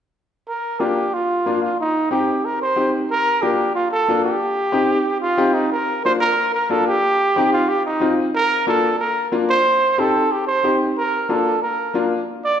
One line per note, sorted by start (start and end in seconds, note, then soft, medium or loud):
0.48 0.81 A#4 medium
0.80 1.03 A#3 medium
0.80 1.03 D4 medium
0.80 1.03 F4 medium
0.80 1.15 G4 medium
1.13 1.62 F4 medium
1.46 1.69 A#3 medium
1.46 1.69 D4 medium
1.46 1.69 F4 medium
1.62 1.77 F4 medium
1.80 2.10 D#4 medium
2.11 2.34 C4 medium
2.11 2.34 D#4 medium
2.11 2.47 G4 medium
2.11 2.34 G4 medium
2.45 2.61 A#4 medium
2.61 2.91 C5 medium
2.76 2.99 C4 medium
2.76 2.99 D#4 medium
2.76 3.00 G4 medium
3.11 3.43 A#4 loud
3.42 3.65 A#3 medium
3.42 3.65 D4 medium
3.42 3.65 F4 medium
3.42 3.74 G4 medium
3.75 3.90 F4 medium
3.91 4.22 A4 medium
4.08 4.31 A#3 medium
4.08 4.31 D4 medium
4.08 4.32 F4 medium
4.24 5.19 G4 medium
4.72 4.96 C4 medium
4.72 4.96 D#4 medium
4.72 4.96 G4 medium
5.21 5.55 F4 medium
5.38 5.61 C4 medium
5.38 5.62 D#4 medium
5.38 5.62 G4 medium
5.54 5.71 D#4 medium
5.72 6.03 A#4 medium
6.05 6.28 A#3 medium
6.05 6.28 D4 medium
6.05 6.28 F4 medium
6.05 6.12 C5 medium
6.20 6.51 A#4 loud
6.54 6.72 A#4 medium
6.70 6.93 A#3 medium
6.70 6.93 D4 medium
6.70 6.93 F4 medium
6.70 6.87 A4 loud
6.88 7.49 G4 loud
7.36 7.59 C4 medium
7.36 7.59 D#4 medium
7.36 7.60 G4 medium
7.53 7.70 F4 medium
7.68 7.84 G4 medium
7.85 8.16 D#4 medium
8.00 8.24 C4 medium
8.00 8.24 D#4 medium
8.00 8.24 F4 medium
8.35 8.65 A#4 loud
8.67 8.90 A#3 medium
8.67 8.90 D4 medium
8.67 8.90 F4 medium
8.67 8.98 A4 medium
8.99 9.30 A#4 medium
9.32 9.55 A#3 medium
9.32 9.55 D4 medium
9.32 9.55 F4 medium
9.49 10.01 C5 medium
9.98 10.21 C4 medium
9.98 10.21 D#4 medium
9.98 10.21 G4 medium
9.98 10.33 A4 medium
10.32 10.46 G4 medium
10.47 10.78 C5 medium
10.64 10.87 C4 medium
10.64 10.87 D#4 medium
10.64 10.87 G4 medium
10.97 11.31 A#4 medium
11.29 11.52 A#3 medium
11.29 11.52 D4 medium
11.29 11.52 F4 medium
11.29 11.62 A4 medium
11.62 12.08 A#4 medium
11.94 12.17 A#3 medium
11.94 12.18 D4 medium
11.94 12.18 F4 medium
12.44 12.59 D5 medium